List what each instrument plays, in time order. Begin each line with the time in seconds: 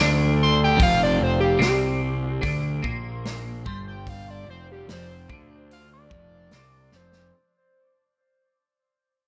Already playing: clean electric guitar D3
0.00 picked electric bass D2
0.43 analog synth lead C6
0.64 analog synth lead G5
0.76 picked electric bass F1, clean electric guitar F2, kick, open hi-hat
0.83 analog synth lead F5
1.03 analog synth lead D5
1.19 picked electric bass F1, clean electric guitar F2
1.23 analog synth lead C5
1.40 analog synth lead G4
1.59 picked electric bass C2, clean electric guitar C3, analog synth lead G4, snare, open hi-hat
2.42 picked electric bass D2, clean electric guitar D3, kick, open hi-hat
2.83 picked electric bass A#1, clean electric guitar A#2, kick
3.25 snare, open hi-hat
3.66 picked electric bass G1, clean electric guitar G2, analog synth lead C6, kick
3.88 analog synth lead G5
4.07 analog synth lead F5, kick, open hi-hat
4.30 analog synth lead D5
4.47 picked electric bass F1, clean electric guitar F2, analog synth lead C5
4.72 analog synth lead G4
4.87 picked electric bass F1, clean electric guitar F2, snare, open hi-hat
4.93 analog synth lead C5
5.29 picked electric bass D2, clean electric guitar D3, kick
5.71 analog synth lead F5, open hi-hat
5.93 analog synth lead D5
6.10 picked electric bass F1, clean electric guitar F2, kick
6.51 picked electric bass C2, clean electric guitar C3, snare, open hi-hat
6.92 picked electric bass F1, clean electric guitar F2, snare
6.96 analog synth lead C5
7.12 snare